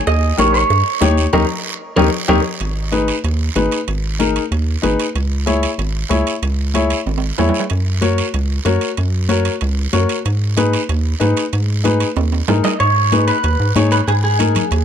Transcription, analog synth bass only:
0.07 D#2
0.39 A#1
0.70 G2
1.01 D#2
1.33 D#2
1.97 D#2
2.29 D#2
2.61 G#1
3.24 D#2
3.56 G#1
3.88 G#1
4.51 D#2
4.84 G#1
5.15 C#2
5.78 G#1
6.10 C#2
6.42 C#2
7.06 G#1
7.39 E2
7.71 F#2
8.34 C#2
8.65 F#2
8.98 F#2
9.62 C#2
9.93 F#2
10.26 G#2
10.89 D#2
11.21 G#2
11.53 G#2
12.16 D#2
12.48 G#2
12.80 G#2
13.44 D#2
13.60 G#2
13.76 G#2
14.08 G#2
14.71 D#2

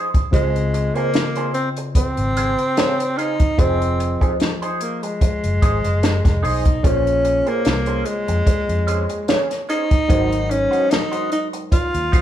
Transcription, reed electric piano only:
Already playing: F3 F4 G#4 C5 D#5
0.31 C#3 C4 F4 C5 D#5
3.57 F3 F4 G#4 C5 D#5
6.83 A#3 F4 G#4 C5 C#5
10.08 F#3 G#3 D#4 A#4 C5

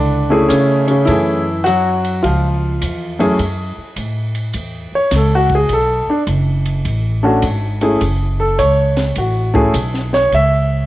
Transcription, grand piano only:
Already playing: D3 D4
0.30 A3 C#4 E4 G#4
0.49 C#3 C#4
0.88 C#3 C#4
1.05 A3 C#4 E4
1.09 E3 G#4
1.64 F#3 F#4
2.23 F3 F4
3.19 F#2 A3 C#4 E4 G#4
4.95 C#5
5.16 A4
5.35 F#4
5.55 G#4
5.73 A4
6.10 D4
7.23 A3 C#4 D4 F#4
7.81 A3 C#4 E4 G#4
8.40 A4
8.59 C#5
9.18 F#4
9.54 A3 C#4 E4 G#4
10.14 C#5
10.35 E5

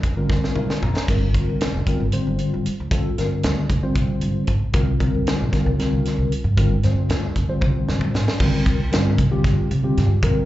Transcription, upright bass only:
0.04 G1
0.17 muted upright bass stroke
0.29 D2
0.43 muted upright bass stroke
0.56 A#2
0.82 A#1
0.96 muted upright bass stroke
1.08 G1
1.49 C2
1.74 G1
2.00 G1
2.14 muted upright bass stroke
2.27 G1
2.54 G1
2.67 muted upright bass stroke
2.80 D2
3.19 G2
3.44 D2
3.70 F1
3.83 muted upright bass stroke
3.96 C2
4.10 muted upright bass stroke
4.22 G2
4.48 G1
4.62 muted upright bass stroke
4.74 C2
5.14 F2
5.40 C2
5.66 C2
5.80 muted upright bass stroke
5.93 C2
6.18 C2
6.31 muted upright bass stroke
6.44 G2
6.57 G1
6.84 G2
7.09 D2
7.36 F1
7.49 muted upright bass stroke
7.62 C2
7.75 muted upright bass stroke
7.89 G2
8.14 G1
8.40 C2
8.54 muted upright bass stroke
8.66 C2
8.93 G2
9.19 C3
9.44 G2
9.71 C3
9.98 G2
10.23 A#1
10.36 muted upright bass stroke

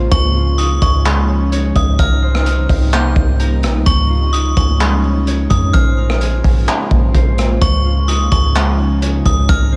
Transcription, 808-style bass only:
0.12 C#2
0.82 C#2
1.76 C#2
1.99 C2
2.69 C2
3.16 C2
3.63 A#1
3.75 C2
3.87 C#2
4.57 C#2
5.51 F2
5.74 A#1
6.44 A#1
6.91 A#1
7.15 A#1
7.62 C#2
8.32 C#2
9.26 C#2
9.49 C2

